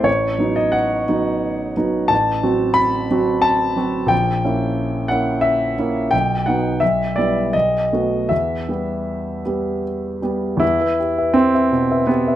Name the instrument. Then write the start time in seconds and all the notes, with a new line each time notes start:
grand piano
0.03 A1 C#5
0.38 F#3 B3 D#4
0.56 D#5
0.72 F#5
1.08 F#3 B3 D#4
1.77 F#3 B3 D#4
2.08 A1 A5
2.43 F#3 C4 F#4
2.74 B5
3.11 F#3 C4 F#4
3.42 A5
3.76 F#3 C4 F#4
4.06 A#1 G5
4.44 A#3 C#4 E4
5.08 A#3 C#4 E4 F#5
5.41 E5
5.78 A#3 C#4 E4
6.11 B1 G5
6.46 F#3 B3 D#4 F#5
6.80 B1 E5
7.16 G3 B3 E4 D5
7.53 B1 D#5
7.93 A3 B3 F#4
8.29 E2 E5
8.69 G3 B3 G4
9.45 G3 B3 G4
10.22 G3 B3 G4
10.57 E2 E4
10.80 B4 E5
10.99 G4
11.18 B4 E5
11.34 C4
11.54 B4 E5
11.72 B2
11.91 B4 E5
12.07 B3 G4
12.27 B4 E5